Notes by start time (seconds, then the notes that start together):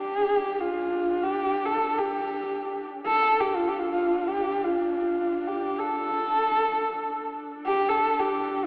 Already playing: D4 G4
0.61 F4
1.24 G4
1.65 A4
1.98 G4
3.06 A4
3.31 D4
3.41 G4
3.56 F4
3.68 G4
3.79 F4
3.92 F4
4.28 G4
4.64 F4
5.47 G4
5.78 A4
6.95 D4
7.66 G4
7.89 A4
8.19 G4